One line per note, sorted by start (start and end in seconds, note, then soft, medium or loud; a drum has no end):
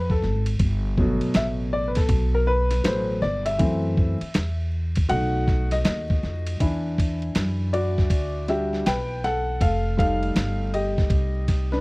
0.00 0.25 F2 loud
0.00 0.11 B4 medium
0.10 0.45 A4 medium
0.10 kick medium
0.22 0.59 G#1 medium
0.22 snare soft
0.46 ride medium
0.59 1.18 G1 loud
0.59 kick loud
0.59 ride medium
0.98 3.57 B2 medium
0.98 2.82 F#3 medium
0.98 2.83 A3 soft
0.98 kick medium
1.21 muted upright bass stroke soft
1.21 ride medium
1.34 2.07 A1 loud
1.34 1.44 E5 loud
1.34 snare loud
1.34 hi-hat pedal medium
1.34 ride medium
1.73 1.88 D5 medium
1.88 1.97 B4 medium
1.95 2.35 A4 medium
1.95 kick loud
1.95 snare soft
1.95 ride medium
2.09 2.81 B1 loud
2.09 kick loud
2.09 ride medium
2.35 2.48 A#4 medium
2.47 2.83 B4 loud
2.71 snare soft
2.71 ride medium
2.84 3.21 A1 loud
2.84 3.18 F#3 soft
2.84 3.18 A3 soft
2.84 3.19 B4 medium
2.84 3.24 C5 medium
2.84 snare loud
2.84 hi-hat pedal soft
2.84 ride medium
3.22 3.58 G1 medium
3.22 3.47 D5 medium
3.22 snare soft
3.46 4.55 E5 loud
3.46 ride medium
3.58 4.18 F#2 loud
3.58 4.13 E3 medium
3.58 4.13 A3 medium
3.58 4.14 C4 medium
3.58 kick loud
3.58 ride medium
3.97 kick medium
4.21 muted upright bass stroke soft
4.21 ride medium
4.34 5.07 E2 loud
4.34 snare loud
4.34 hi-hat pedal medium
4.34 ride medium
4.95 kick medium
4.95 ride medium
5.09 5.82 B1 loud
5.09 6.56 A3 medium
5.09 6.56 D#4 medium
5.09 6.55 F#4 medium
5.09 5.67 F#5 loud
5.09 ride medium
5.47 kick medium
5.47 snare soft
5.71 5.77 D#5 medium
5.71 snare soft
5.71 ride medium
5.84 6.21 D#2 medium
5.84 6.56 D#5 medium
5.84 snare loud
5.84 hi-hat pedal medium
5.84 ride medium
6.10 kick medium
6.23 6.59 F2 medium
6.23 snare soft
6.47 ride medium
6.60 7.32 E2 medium
6.60 9.56 E3 medium
6.60 8.47 D4 soft
6.60 9.57 E4 medium
6.60 kick medium
6.60 ride medium
6.98 kick medium
6.98 ride medium
7.22 ride soft
7.35 8.10 F#2 medium
7.35 snare loud
7.35 hi-hat pedal medium
7.35 ride medium
7.73 8.44 F#4 medium
7.73 8.44 D5 medium
7.73 ride medium
7.98 kick medium
7.98 snare soft
8.10 8.81 D2 medium
8.10 kick medium
8.10 ride medium
8.48 8.82 G3 soft
8.48 8.82 D4 soft
8.48 8.82 F#4 medium
8.48 8.84 G4 medium
8.48 8.87 E5 medium
8.48 snare soft
8.48 ride medium
8.73 snare soft
8.86 9.57 B1 medium
8.86 9.21 B4 medium
8.86 9.24 G5 loud
8.86 snare loud
8.86 hi-hat pedal soft
8.86 ride medium
9.24 9.58 A4 medium
9.24 9.62 F#5 loud
9.24 snare soft
9.24 ride medium
9.61 10.32 F1 loud
9.61 9.96 A4 medium
9.61 9.97 F5 loud
9.61 kick medium
9.61 ride medium
9.97 11.81 G3 soft
9.97 11.81 A3 medium
9.97 11.81 D#4 medium
9.97 10.69 A4 medium
9.97 10.69 F5 loud
9.97 kick medium
9.97 ride medium
10.23 ride soft
10.35 11.07 G1 medium
10.35 snare loud
10.35 hi-hat pedal medium
10.35 ride medium
10.74 11.68 G4 medium
10.74 11.75 D#5 medium
10.74 ride medium
10.98 kick medium
10.98 snare soft
11.10 11.81 C2 medium
11.10 kick medium
11.10 ride medium
11.48 kick medium
11.48 snare soft
11.48 ride medium
11.72 11.81 D4 medium
11.72 11.81 B4 medium
11.72 snare soft